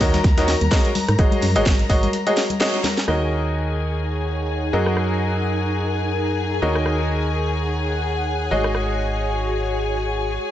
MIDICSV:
0, 0, Header, 1, 6, 480
1, 0, Start_track
1, 0, Key_signature, -6, "minor"
1, 0, Tempo, 472441
1, 1207, Time_signature, 4, 2, 24, 8
1, 10678, End_track
2, 0, Start_track
2, 0, Title_t, "String section"
2, 0, Program_c, 0, 48
2, 0, Note_on_c, 0, 70, 84
2, 0, Note_on_c, 0, 82, 80
2, 3126, Note_on_c, 0, 68, 78
2, 3126, Note_on_c, 0, 80, 75
2, 3137, Note_off_c, 0, 70, 0
2, 3137, Note_off_c, 0, 82, 0
2, 10678, Note_off_c, 0, 68, 0
2, 10678, Note_off_c, 0, 80, 0
2, 10678, End_track
3, 0, Start_track
3, 0, Title_t, "Ambient pad"
3, 0, Program_c, 1, 92
3, 3128, Note_on_c, 1, 63, 75
3, 3354, Note_on_c, 1, 73, 72
3, 3888, Note_on_c, 1, 78, 72
3, 5044, Note_on_c, 1, 70, 77
3, 5502, Note_off_c, 1, 78, 0
3, 5504, Note_on_c, 1, 80, 85
3, 5581, Note_off_c, 1, 73, 0
3, 7129, Note_on_c, 1, 73, 87
3, 7162, Note_on_c, 1, 78, 87
3, 7501, Note_off_c, 1, 70, 0
3, 7501, Note_off_c, 1, 80, 0
3, 8647, Note_on_c, 1, 66, 87
3, 9293, Note_on_c, 1, 80, 76
3, 9523, Note_off_c, 1, 78, 0
3, 9524, Note_off_c, 1, 63, 0
3, 10678, Note_off_c, 1, 66, 0
3, 10678, Note_off_c, 1, 73, 0
3, 10678, Note_off_c, 1, 80, 0
3, 10678, End_track
4, 0, Start_track
4, 0, Title_t, "Upright piano"
4, 0, Program_c, 2, 0
4, 7, Note_on_c, 2, 51, 86
4, 7, Note_on_c, 2, 66, 81
4, 7, Note_on_c, 2, 70, 79
4, 7, Note_on_c, 2, 73, 82
4, 7, Note_on_c, 2, 75, 98
4, 167, Note_off_c, 2, 51, 0
4, 167, Note_off_c, 2, 66, 0
4, 167, Note_off_c, 2, 70, 0
4, 167, Note_off_c, 2, 73, 0
4, 167, Note_off_c, 2, 75, 0
4, 382, Note_on_c, 2, 51, 82
4, 382, Note_on_c, 2, 66, 71
4, 382, Note_on_c, 2, 70, 74
4, 382, Note_on_c, 2, 73, 72
4, 382, Note_on_c, 2, 75, 86
4, 519, Note_off_c, 2, 51, 0
4, 519, Note_off_c, 2, 66, 0
4, 519, Note_off_c, 2, 70, 0
4, 519, Note_off_c, 2, 73, 0
4, 519, Note_off_c, 2, 75, 0
4, 726, Note_on_c, 2, 56, 92
4, 726, Note_on_c, 2, 66, 82
4, 726, Note_on_c, 2, 70, 83
4, 726, Note_on_c, 2, 73, 84
4, 726, Note_on_c, 2, 75, 97
4, 886, Note_off_c, 2, 56, 0
4, 886, Note_off_c, 2, 66, 0
4, 886, Note_off_c, 2, 70, 0
4, 886, Note_off_c, 2, 73, 0
4, 886, Note_off_c, 2, 75, 0
4, 1206, Note_on_c, 2, 56, 81
4, 1206, Note_on_c, 2, 66, 73
4, 1206, Note_on_c, 2, 68, 70
4, 1206, Note_on_c, 2, 73, 73
4, 1206, Note_on_c, 2, 75, 84
4, 1444, Note_off_c, 2, 56, 0
4, 1444, Note_off_c, 2, 66, 0
4, 1444, Note_off_c, 2, 68, 0
4, 1444, Note_off_c, 2, 73, 0
4, 1444, Note_off_c, 2, 75, 0
4, 1581, Note_on_c, 2, 68, 86
4, 1582, Note_on_c, 2, 56, 98
4, 1582, Note_on_c, 2, 66, 87
4, 1582, Note_on_c, 2, 73, 87
4, 1582, Note_on_c, 2, 75, 108
4, 1718, Note_off_c, 2, 66, 0
4, 1718, Note_off_c, 2, 68, 0
4, 1719, Note_off_c, 2, 56, 0
4, 1719, Note_off_c, 2, 73, 0
4, 1719, Note_off_c, 2, 75, 0
4, 1926, Note_on_c, 2, 56, 87
4, 1926, Note_on_c, 2, 66, 82
4, 1926, Note_on_c, 2, 68, 82
4, 1927, Note_on_c, 2, 73, 80
4, 1927, Note_on_c, 2, 75, 98
4, 2086, Note_off_c, 2, 66, 0
4, 2087, Note_off_c, 2, 56, 0
4, 2087, Note_off_c, 2, 68, 0
4, 2087, Note_off_c, 2, 73, 0
4, 2087, Note_off_c, 2, 75, 0
4, 2302, Note_on_c, 2, 56, 80
4, 2302, Note_on_c, 2, 66, 72
4, 2302, Note_on_c, 2, 68, 75
4, 2302, Note_on_c, 2, 73, 70
4, 2302, Note_on_c, 2, 75, 86
4, 2439, Note_off_c, 2, 56, 0
4, 2439, Note_off_c, 2, 66, 0
4, 2439, Note_off_c, 2, 68, 0
4, 2439, Note_off_c, 2, 73, 0
4, 2439, Note_off_c, 2, 75, 0
4, 2647, Note_on_c, 2, 56, 91
4, 2647, Note_on_c, 2, 66, 83
4, 2647, Note_on_c, 2, 68, 86
4, 2647, Note_on_c, 2, 73, 84
4, 2648, Note_on_c, 2, 75, 103
4, 2807, Note_off_c, 2, 56, 0
4, 2807, Note_off_c, 2, 66, 0
4, 2807, Note_off_c, 2, 68, 0
4, 2807, Note_off_c, 2, 73, 0
4, 2807, Note_off_c, 2, 75, 0
4, 3127, Note_on_c, 2, 51, 70
4, 3127, Note_on_c, 2, 66, 63
4, 3127, Note_on_c, 2, 70, 65
4, 3127, Note_on_c, 2, 73, 65
4, 3127, Note_on_c, 2, 75, 78
4, 4782, Note_off_c, 2, 51, 0
4, 4782, Note_off_c, 2, 66, 0
4, 4782, Note_off_c, 2, 70, 0
4, 4782, Note_off_c, 2, 73, 0
4, 4782, Note_off_c, 2, 75, 0
4, 4806, Note_on_c, 2, 54, 71
4, 4806, Note_on_c, 2, 66, 64
4, 4806, Note_on_c, 2, 68, 65
4, 4806, Note_on_c, 2, 70, 67
4, 4806, Note_on_c, 2, 75, 76
4, 6701, Note_off_c, 2, 54, 0
4, 6701, Note_off_c, 2, 66, 0
4, 6701, Note_off_c, 2, 70, 0
4, 6701, Note_off_c, 2, 75, 0
4, 6702, Note_off_c, 2, 68, 0
4, 6726, Note_on_c, 2, 51, 73
4, 6726, Note_on_c, 2, 70, 67
4, 6726, Note_on_c, 2, 73, 67
4, 6726, Note_on_c, 2, 75, 78
4, 6727, Note_on_c, 2, 66, 65
4, 8621, Note_off_c, 2, 51, 0
4, 8621, Note_off_c, 2, 70, 0
4, 8621, Note_off_c, 2, 73, 0
4, 8621, Note_off_c, 2, 75, 0
4, 8622, Note_off_c, 2, 66, 0
4, 8646, Note_on_c, 2, 56, 73
4, 8646, Note_on_c, 2, 66, 66
4, 8646, Note_on_c, 2, 68, 66
4, 8646, Note_on_c, 2, 73, 67
4, 8646, Note_on_c, 2, 75, 79
4, 10678, Note_off_c, 2, 56, 0
4, 10678, Note_off_c, 2, 66, 0
4, 10678, Note_off_c, 2, 68, 0
4, 10678, Note_off_c, 2, 73, 0
4, 10678, Note_off_c, 2, 75, 0
4, 10678, End_track
5, 0, Start_track
5, 0, Title_t, "FM bass"
5, 0, Program_c, 3, 39
5, 6, Note_on_c, 3, 39, 98
5, 184, Note_off_c, 3, 39, 0
5, 246, Note_on_c, 3, 39, 101
5, 557, Note_off_c, 3, 39, 0
5, 622, Note_on_c, 3, 39, 83
5, 696, Note_off_c, 3, 39, 0
5, 1102, Note_on_c, 3, 44, 90
5, 1176, Note_off_c, 3, 44, 0
5, 1206, Note_on_c, 3, 32, 101
5, 1302, Note_off_c, 3, 32, 0
5, 1447, Note_on_c, 3, 42, 93
5, 1581, Note_on_c, 3, 32, 82
5, 1597, Note_off_c, 3, 42, 0
5, 1655, Note_off_c, 3, 32, 0
5, 1686, Note_on_c, 3, 32, 85
5, 1864, Note_off_c, 3, 32, 0
5, 1927, Note_on_c, 3, 32, 101
5, 2104, Note_off_c, 3, 32, 0
5, 3126, Note_on_c, 3, 39, 84
5, 4786, Note_off_c, 3, 39, 0
5, 4807, Note_on_c, 3, 42, 84
5, 6706, Note_off_c, 3, 42, 0
5, 6727, Note_on_c, 3, 39, 82
5, 8626, Note_off_c, 3, 39, 0
5, 8646, Note_on_c, 3, 32, 82
5, 10546, Note_off_c, 3, 32, 0
5, 10678, End_track
6, 0, Start_track
6, 0, Title_t, "Drums"
6, 5, Note_on_c, 9, 54, 84
6, 6, Note_on_c, 9, 36, 58
6, 6, Note_on_c, 9, 38, 104
6, 6, Note_on_c, 9, 42, 81
6, 7, Note_on_c, 9, 46, 99
6, 106, Note_off_c, 9, 54, 0
6, 108, Note_off_c, 9, 36, 0
6, 108, Note_off_c, 9, 38, 0
6, 108, Note_off_c, 9, 42, 0
6, 109, Note_off_c, 9, 46, 0
6, 139, Note_on_c, 9, 63, 89
6, 141, Note_on_c, 9, 38, 104
6, 141, Note_on_c, 9, 42, 80
6, 142, Note_off_c, 9, 42, 0
6, 142, Note_on_c, 9, 42, 41
6, 146, Note_on_c, 9, 54, 50
6, 241, Note_off_c, 9, 63, 0
6, 243, Note_off_c, 9, 38, 0
6, 244, Note_off_c, 9, 42, 0
6, 246, Note_on_c, 9, 36, 111
6, 247, Note_on_c, 9, 38, 107
6, 247, Note_on_c, 9, 42, 68
6, 248, Note_off_c, 9, 54, 0
6, 348, Note_off_c, 9, 36, 0
6, 348, Note_off_c, 9, 38, 0
6, 349, Note_off_c, 9, 42, 0
6, 382, Note_on_c, 9, 38, 101
6, 382, Note_on_c, 9, 42, 82
6, 383, Note_off_c, 9, 42, 0
6, 383, Note_on_c, 9, 42, 40
6, 483, Note_off_c, 9, 38, 0
6, 484, Note_off_c, 9, 42, 0
6, 487, Note_on_c, 9, 42, 69
6, 487, Note_on_c, 9, 46, 101
6, 488, Note_on_c, 9, 38, 58
6, 489, Note_on_c, 9, 54, 83
6, 588, Note_off_c, 9, 42, 0
6, 589, Note_off_c, 9, 46, 0
6, 590, Note_off_c, 9, 38, 0
6, 590, Note_off_c, 9, 54, 0
6, 623, Note_on_c, 9, 42, 39
6, 625, Note_on_c, 9, 63, 63
6, 626, Note_on_c, 9, 54, 54
6, 724, Note_off_c, 9, 42, 0
6, 726, Note_on_c, 9, 36, 116
6, 727, Note_off_c, 9, 63, 0
6, 727, Note_on_c, 9, 38, 112
6, 727, Note_on_c, 9, 42, 68
6, 728, Note_off_c, 9, 38, 0
6, 728, Note_off_c, 9, 54, 0
6, 728, Note_on_c, 9, 38, 115
6, 828, Note_off_c, 9, 36, 0
6, 829, Note_off_c, 9, 42, 0
6, 830, Note_off_c, 9, 38, 0
6, 862, Note_on_c, 9, 38, 58
6, 862, Note_on_c, 9, 42, 39
6, 963, Note_off_c, 9, 38, 0
6, 964, Note_off_c, 9, 42, 0
6, 967, Note_on_c, 9, 42, 68
6, 967, Note_on_c, 9, 46, 103
6, 967, Note_on_c, 9, 63, 90
6, 970, Note_on_c, 9, 54, 80
6, 1068, Note_off_c, 9, 42, 0
6, 1068, Note_off_c, 9, 46, 0
6, 1068, Note_off_c, 9, 63, 0
6, 1071, Note_off_c, 9, 54, 0
6, 1100, Note_on_c, 9, 54, 43
6, 1102, Note_on_c, 9, 37, 82
6, 1102, Note_on_c, 9, 42, 40
6, 1199, Note_off_c, 9, 54, 0
6, 1199, Note_on_c, 9, 54, 37
6, 1204, Note_off_c, 9, 37, 0
6, 1204, Note_off_c, 9, 42, 0
6, 1206, Note_on_c, 9, 36, 115
6, 1207, Note_on_c, 9, 37, 68
6, 1207, Note_on_c, 9, 42, 66
6, 1300, Note_off_c, 9, 54, 0
6, 1308, Note_off_c, 9, 36, 0
6, 1308, Note_off_c, 9, 37, 0
6, 1308, Note_off_c, 9, 42, 0
6, 1335, Note_on_c, 9, 63, 98
6, 1342, Note_on_c, 9, 42, 42
6, 1437, Note_off_c, 9, 63, 0
6, 1437, Note_on_c, 9, 54, 81
6, 1444, Note_off_c, 9, 42, 0
6, 1446, Note_on_c, 9, 38, 52
6, 1446, Note_on_c, 9, 42, 68
6, 1447, Note_on_c, 9, 46, 97
6, 1538, Note_off_c, 9, 54, 0
6, 1548, Note_off_c, 9, 38, 0
6, 1548, Note_off_c, 9, 42, 0
6, 1548, Note_off_c, 9, 46, 0
6, 1579, Note_on_c, 9, 54, 48
6, 1582, Note_on_c, 9, 42, 42
6, 1681, Note_off_c, 9, 54, 0
6, 1683, Note_off_c, 9, 42, 0
6, 1685, Note_on_c, 9, 63, 69
6, 1686, Note_on_c, 9, 36, 114
6, 1686, Note_on_c, 9, 38, 115
6, 1686, Note_on_c, 9, 42, 85
6, 1687, Note_off_c, 9, 42, 0
6, 1687, Note_on_c, 9, 42, 68
6, 1688, Note_off_c, 9, 38, 0
6, 1688, Note_on_c, 9, 38, 121
6, 1688, Note_on_c, 9, 54, 35
6, 1787, Note_off_c, 9, 63, 0
6, 1788, Note_off_c, 9, 36, 0
6, 1788, Note_off_c, 9, 42, 0
6, 1789, Note_off_c, 9, 38, 0
6, 1790, Note_off_c, 9, 54, 0
6, 1822, Note_on_c, 9, 38, 54
6, 1822, Note_on_c, 9, 42, 38
6, 1922, Note_on_c, 9, 54, 87
6, 1923, Note_off_c, 9, 38, 0
6, 1923, Note_off_c, 9, 42, 0
6, 1927, Note_on_c, 9, 36, 59
6, 1927, Note_on_c, 9, 42, 70
6, 1927, Note_on_c, 9, 46, 102
6, 2024, Note_off_c, 9, 54, 0
6, 2028, Note_off_c, 9, 36, 0
6, 2028, Note_off_c, 9, 42, 0
6, 2028, Note_off_c, 9, 46, 0
6, 2059, Note_on_c, 9, 54, 54
6, 2062, Note_on_c, 9, 42, 43
6, 2064, Note_on_c, 9, 63, 90
6, 2161, Note_off_c, 9, 54, 0
6, 2164, Note_off_c, 9, 42, 0
6, 2166, Note_off_c, 9, 63, 0
6, 2166, Note_on_c, 9, 42, 88
6, 2167, Note_off_c, 9, 42, 0
6, 2167, Note_on_c, 9, 42, 68
6, 2167, Note_on_c, 9, 54, 37
6, 2269, Note_off_c, 9, 42, 0
6, 2269, Note_off_c, 9, 54, 0
6, 2302, Note_on_c, 9, 38, 38
6, 2302, Note_on_c, 9, 42, 41
6, 2401, Note_on_c, 9, 54, 84
6, 2403, Note_off_c, 9, 38, 0
6, 2404, Note_off_c, 9, 42, 0
6, 2406, Note_on_c, 9, 42, 67
6, 2407, Note_on_c, 9, 46, 102
6, 2408, Note_on_c, 9, 38, 62
6, 2502, Note_off_c, 9, 54, 0
6, 2508, Note_off_c, 9, 42, 0
6, 2508, Note_off_c, 9, 46, 0
6, 2509, Note_off_c, 9, 38, 0
6, 2536, Note_on_c, 9, 63, 64
6, 2538, Note_on_c, 9, 54, 49
6, 2542, Note_on_c, 9, 42, 42
6, 2638, Note_off_c, 9, 63, 0
6, 2639, Note_off_c, 9, 54, 0
6, 2644, Note_off_c, 9, 42, 0
6, 2646, Note_on_c, 9, 38, 118
6, 2646, Note_on_c, 9, 42, 89
6, 2647, Note_off_c, 9, 42, 0
6, 2647, Note_on_c, 9, 42, 70
6, 2648, Note_off_c, 9, 38, 0
6, 2648, Note_on_c, 9, 38, 123
6, 2748, Note_off_c, 9, 42, 0
6, 2750, Note_off_c, 9, 38, 0
6, 2782, Note_on_c, 9, 42, 40
6, 2881, Note_on_c, 9, 63, 90
6, 2884, Note_off_c, 9, 42, 0
6, 2885, Note_on_c, 9, 54, 90
6, 2886, Note_on_c, 9, 38, 65
6, 2886, Note_on_c, 9, 46, 108
6, 2887, Note_on_c, 9, 42, 68
6, 2983, Note_off_c, 9, 63, 0
6, 2987, Note_off_c, 9, 54, 0
6, 2988, Note_off_c, 9, 38, 0
6, 2988, Note_off_c, 9, 46, 0
6, 2989, Note_off_c, 9, 42, 0
6, 3022, Note_on_c, 9, 38, 74
6, 3022, Note_on_c, 9, 42, 41
6, 3023, Note_on_c, 9, 54, 46
6, 3124, Note_off_c, 9, 38, 0
6, 3124, Note_off_c, 9, 42, 0
6, 3125, Note_off_c, 9, 54, 0
6, 3127, Note_on_c, 9, 37, 65
6, 3229, Note_off_c, 9, 37, 0
6, 4942, Note_on_c, 9, 37, 71
6, 5044, Note_off_c, 9, 37, 0
6, 5047, Note_on_c, 9, 37, 70
6, 5148, Note_off_c, 9, 37, 0
6, 6862, Note_on_c, 9, 37, 74
6, 6964, Note_off_c, 9, 37, 0
6, 6967, Note_on_c, 9, 37, 69
6, 7068, Note_off_c, 9, 37, 0
6, 8781, Note_on_c, 9, 37, 77
6, 8883, Note_off_c, 9, 37, 0
6, 8886, Note_on_c, 9, 37, 72
6, 8988, Note_off_c, 9, 37, 0
6, 10678, End_track
0, 0, End_of_file